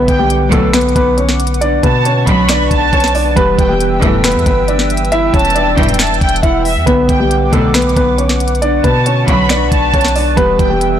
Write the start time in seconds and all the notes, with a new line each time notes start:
Already playing: D3 B3 B4 F#5 D6
0.08 B1 G5, kick, closed hi-hat
0.19 G3 G4
0.30 closed hi-hat
0.52 B1 D2 B2 F#3 A3 A4, kick, closed hi-hat
0.73 B3 B4, finger snap, snare, closed hi-hat
0.81 closed hi-hat
0.89 closed hi-hat
0.96 B1 B3 B4, kick, closed hi-hat
1.17 C#4 C#5, closed hi-hat
1.29 snare
1.40 closed hi-hat
1.47 closed hi-hat
1.54 closed hi-hat
1.61 D4 D5 C#6, closed hi-hat
1.83 B2 B3 B4 A5, kick, closed hi-hat
2.05 C#4 C#5, closed hi-hat
2.27 B1 D2 B2 F#3 B5, kick, closed hi-hat
2.49 D4 D5, finger snap, snare, closed hi-hat
2.71 B1 A5, kick, closed hi-hat
2.93 B1 C#4 C#5, kick, closed hi-hat
3.00 snare, closed hi-hat
3.08 closed hi-hat
3.15 D4 D5, open hi-hat
3.35 E1 E3 G3 B3 G4 B4 E5 G5 E6, kick, closed hi-hat
3.58 E1 G5, kick, closed hi-hat
3.69 G3 G4
3.80 closed hi-hat
4.02 E1 B1 G2 E3 A3 A4, kick, closed hi-hat
4.24 B3 B4, finger snap, snare, closed hi-hat
4.32 E2, closed hi-hat
4.39 closed hi-hat
4.46 G1 B3 B4, kick, closed hi-hat
4.68 D4 D5, closed hi-hat
4.79 snare
4.90 closed hi-hat
4.97 closed hi-hat
5.05 closed hi-hat
5.12 E4 E5, closed hi-hat
5.34 E1 C#4 C#5 A5, kick, closed hi-hat
5.39 closed hi-hat
5.45 closed hi-hat
5.50 closed hi-hat
5.55 D4 D5, closed hi-hat
5.78 E1 B1 G2 E3 G5, kick, closed hi-hat
5.83 closed hi-hat
5.89 closed hi-hat
5.94 closed hi-hat
5.99 A5, finger snap, snare, closed hi-hat
6.07 closed hi-hat
6.14 closed hi-hat
6.21 E1 G5, kick, closed hi-hat
6.29 closed hi-hat
6.36 closed hi-hat
6.43 E1 E4 E5 F#5, kick, closed hi-hat
6.65 E5, open hi-hat
6.76 E2
6.86 B1 D3 B3 B4 F#5 D6, kick, closed hi-hat
7.09 B1 G5, kick, closed hi-hat
7.20 G3 G4
7.31 closed hi-hat
7.53 B1 D2 B2 F#3 A3 A4, kick, closed hi-hat
7.74 B3 B4, finger snap, snare, closed hi-hat
7.82 closed hi-hat
7.89 closed hi-hat
7.96 B1 B3 B4, kick, closed hi-hat
8.18 C#4 C#5, closed hi-hat
8.29 snare
8.40 closed hi-hat
8.48 closed hi-hat
8.55 closed hi-hat
8.62 D4 D5 C#6, closed hi-hat
8.84 B2 B3 B4 A5, kick, closed hi-hat
9.06 C#4 C#5, closed hi-hat
9.28 B1 D2 B2 F#3 B5, kick, closed hi-hat
9.49 D4 D5, finger snap, snare, closed hi-hat
9.72 B1 A5, kick, closed hi-hat
9.94 B1 C#4 C#5, kick, closed hi-hat
10.01 snare, closed hi-hat
10.08 closed hi-hat
10.16 D4 D5, open hi-hat
10.36 E1 E3 G3 B3 G4 B4 E5 G5 E6, kick, closed hi-hat
10.59 E1 G5, kick, closed hi-hat
10.70 G3 G4
10.81 closed hi-hat